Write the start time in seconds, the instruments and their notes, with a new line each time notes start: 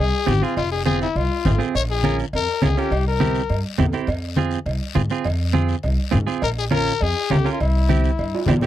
0.00 upright bass C2, trumpet G#4
0.26 upright bass G#1, clean electric guitar C4 F4 G#4, trumpet G4, high conga, short guiro
0.42 clean electric guitar C4 F4 G#4, trumpet F4, short guiro
0.57 upright bass F1, trumpet F4, cowbell, high conga, long guiro
0.72 trumpet G#4
0.85 clean electric guitar C4 F4 G#4, trumpet G#4, high conga, short guiro
1.01 trumpet E4, short guiro
1.16 upright bass C2, trumpet F4, cowbell, high conga, long guiro
1.45 upright bass G#1, clean electric guitar C4 F4 G#4, high conga, low conga, low timbale, short guiro
1.59 clean electric guitar C4 F4 G#4, short guiro
1.75 upright bass A#1, trumpet C#5, cowbell, high conga, long guiro
1.91 trumpet G#4
2.03 clean electric guitar C#4 F4 A#4, high conga, short guiro
2.19 short guiro
2.33 upright bass F2, trumpet A#4, cowbell, high conga, long guiro
2.62 upright bass C#2, clean electric guitar C#4 F4 A#4, trumpet G#4, high conga, low timbale, short guiro
2.77 clean electric guitar C#4 F4 A#4, trumpet G4, short guiro
2.91 upright bass C2, cowbell, high conga, long guiro
3.08 trumpet A#4
3.20 clean electric guitar C4 E4 G4, high conga, short guiro
3.35 short guiro
3.50 upright bass G2, cowbell, high conga, long guiro
3.78 upright bass E2, clean electric guitar C4 E4 G4, high conga, low conga, low timbale, short guiro
3.93 clean electric guitar C4 E4 G4, short guiro
4.07 upright bass F2, cowbell, high conga, long guiro
4.36 clean electric guitar C4 F4 G#4, high conga, short guiro
4.51 short guiro
4.66 upright bass C2, cowbell, high conga, long guiro
4.95 upright bass G#2, clean electric guitar C4 F4 G#4, high conga, short guiro
5.10 clean electric guitar C4 F4 G#4, short guiro
5.25 upright bass F2, cowbell, high conga, long guiro
5.53 clean electric guitar C4 F4 G#4, high conga, short guiro
5.69 short guiro
5.83 upright bass C2, cowbell, high conga, long guiro
6.11 upright bass G#2, clean electric guitar C4 F4 G#4, high conga, low conga, short guiro
6.27 clean electric guitar C4 F4 G#4, short guiro
6.42 upright bass A#1, trumpet A#4, cowbell, high conga, long guiro
6.58 trumpet G#4
6.71 clean electric guitar C#4 F4 A#4, trumpet A#4, high conga, short guiro
6.87 short guiro
7.00 upright bass F2, trumpet G#4, cowbell, high conga, long guiro
7.30 upright bass C#2, clean electric guitar C#4 F4 A#4, trumpet G4, high conga, low timbale, short guiro
7.45 clean electric guitar C#4 F4 A#4, short guiro
7.53 trumpet F4
7.60 upright bass C2, trumpet E4, cowbell, high conga, long guiro
7.89 clean electric guitar C4 E4 G4, high conga, short guiro
8.04 short guiro
8.18 upright bass G2, cowbell, high conga, long guiro
8.35 high timbale
8.46 upright bass E2, clean electric guitar C4 E4 G4, high conga, low conga, high timbale, short guiro
8.61 clean electric guitar C4 E4 G4, low conga, short guiro